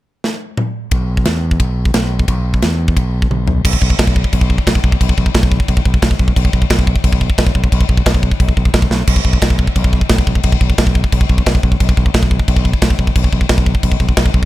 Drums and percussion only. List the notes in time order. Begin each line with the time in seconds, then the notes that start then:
0.24 snare
0.57 mid tom
0.91 kick, ride bell
1.17 kick
1.25 snare, ride bell
1.51 kick
1.60 kick, ride bell
1.85 kick
1.94 snare, ride bell
2.19 kick
2.28 kick, ride bell
2.54 kick
2.62 snare, ride bell
2.88 kick
2.97 kick, ride bell
3.22 kick
3.31 high tom
3.48 floor tom
3.65 kick, crash
3.73 kick
3.82 kick
3.90 kick
3.99 kick, snare, crash
4.07 kick
4.16 kick
4.24 kick
4.33 kick, crash
4.41 kick
4.50 kick
4.58 kick
4.67 kick, snare, crash
4.75 kick
4.84 kick
4.92 kick
5.01 kick, crash
5.09 kick
5.18 kick
5.26 kick
5.35 kick, snare, crash
5.43 kick
5.52 kick
5.60 kick
5.68 kick, crash
5.77 kick
5.85 kick
5.94 kick
6.02 kick, snare, crash
6.11 kick
6.19 kick
6.28 kick
6.36 kick, crash
6.45 kick
6.53 kick
6.62 kick
6.70 kick, snare, crash
6.79 kick
6.87 kick
6.96 kick
7.04 kick, crash
7.13 kick
7.21 kick
7.30 kick
7.38 kick, snare, crash
7.47 kick
7.55 kick
7.64 kick
7.72 kick, crash
7.81 kick
7.89 kick
7.97 kick
8.06 kick, snare, crash
8.14 kick
8.23 kick
8.31 kick
8.40 kick, crash
8.49 kick
8.57 kick
8.65 kick
8.74 kick, snare, crash
8.82 kick
8.91 snare
9.07 kick, crash
9.16 kick
9.25 kick
9.33 kick
9.42 kick, snare, crash
9.50 kick
9.59 kick
9.67 kick
9.76 kick, crash
9.84 kick
9.93 kick
10.01 kick
10.09 kick, snare, crash
10.18 kick
10.27 kick
10.35 kick
10.43 kick, crash
10.52 kick
10.61 kick
10.70 kick
10.78 kick, snare, crash
10.87 kick
10.95 kick
11.04 kick
11.12 kick, crash
11.21 kick
11.29 kick
11.38 kick
11.46 kick, snare, crash
11.55 kick
11.63 kick
11.72 kick
11.80 kick, crash
11.89 kick
11.97 kick
12.06 kick
12.14 kick, snare, crash
12.23 kick
12.31 kick
12.39 kick
12.48 kick, crash
12.56 kick
12.65 kick
12.73 kick
12.82 kick, snare, crash
12.90 kick
12.99 kick
13.07 kick
13.16 kick, crash
13.24 kick
13.33 kick
13.41 kick
13.49 kick, snare, crash
13.58 kick
13.66 kick
13.75 kick
13.83 kick, crash
13.92 kick
14.00 kick
14.09 kick
14.17 kick, snare, crash
14.26 kick
14.34 kick